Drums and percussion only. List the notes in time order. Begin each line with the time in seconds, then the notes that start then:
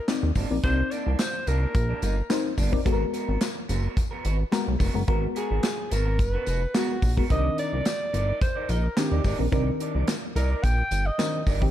0.08 snare, clap, closed hi-hat, tambourine
0.35 kick, open hi-hat, tambourine
0.64 kick, closed hi-hat, tambourine
0.91 closed hi-hat, tambourine
1.19 snare, clap, closed hi-hat, tambourine
1.47 closed hi-hat, tambourine
1.75 kick, closed hi-hat, tambourine
2.02 closed hi-hat, tambourine
2.30 snare, clap, closed hi-hat, tambourine
2.58 kick, open hi-hat, tambourine
2.73 kick
2.86 kick, closed hi-hat, tambourine
3.13 closed hi-hat, tambourine
3.41 snare, clap, closed hi-hat, tambourine
3.69 closed hi-hat, tambourine
3.97 kick, closed hi-hat, tambourine
4.25 closed hi-hat, tambourine
4.53 snare, clap, closed hi-hat, tambourine
4.80 kick, open hi-hat, tambourine
5.08 kick, closed hi-hat
5.36 closed hi-hat, tambourine
5.63 snare, clap, closed hi-hat, tambourine
5.91 closed hi-hat, tambourine
6.19 kick, closed hi-hat, tambourine
6.46 closed hi-hat, tambourine
6.75 snare, clap, closed hi-hat, tambourine
7.02 kick, open hi-hat, tambourine
7.17 kick
7.30 kick, closed hi-hat, tambourine
7.58 closed hi-hat, tambourine
7.85 snare, clap, closed hi-hat, tambourine
8.14 closed hi-hat, tambourine
8.41 kick, closed hi-hat, tambourine
8.69 closed hi-hat, tambourine
8.97 snare, clap, closed hi-hat, tambourine
9.24 kick, open hi-hat, tambourine
9.52 kick, closed hi-hat, tambourine
9.80 closed hi-hat
10.08 snare, clap, closed hi-hat, tambourine
10.36 closed hi-hat, tambourine
10.64 kick, closed hi-hat, tambourine
10.91 closed hi-hat, tambourine
11.19 snare, clap, closed hi-hat, tambourine
11.47 kick, open hi-hat, tambourine
11.62 kick